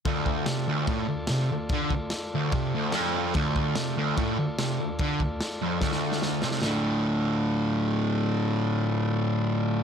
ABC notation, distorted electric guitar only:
X:1
M:4/4
L:1/8
Q:1/4=147
K:Dm
V:1 name="Distorted electric guitar" clef=bass
D,,2 C, D,, A,, D,, C, D,, | D, D,, z D,, C, D,, F,,2 | D,,2 C, D,, A,, D,, C, D,, | D, D,, z F,, D,,3 C, |
[D,,A,,D,]8- | [D,,A,,D,]8 |]